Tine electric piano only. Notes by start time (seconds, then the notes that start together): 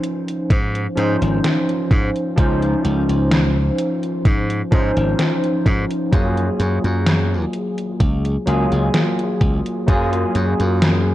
Already playing: F3 C#4 D#4 C5
0.96 F3 C#4 D#4 C5
2.36 F3 C#4 D#4 C5
4.71 F3 C#4 D#4 C5
6.11 F#3 A#3 F4 G#4
8.46 F#3 A#3 F4 G#4
9.86 F#3 A#3 F4 G#4